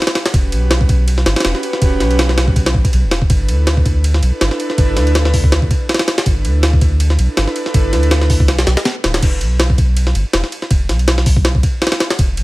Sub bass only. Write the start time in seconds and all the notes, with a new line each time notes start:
0.34 E1
0.52 B1
1.26 G1
1.45 E1
1.82 E1
2.00 B1
2.74 A1
2.93 B1
3.03 E1
3.30 G1
3.48 D2
4.22 B1
4.41 G1
4.78 G1
4.96 D2
6.26 G1
6.45 D2
7.19 B1
7.38 G1
7.74 G1
7.93 D2
8.48 B1
8.67 B1
9.04 D1
9.22 E1
9.41 B1
10.15 G1
10.33 E1
10.71 E1
10.89 B1
12.19 E1
12.37 B1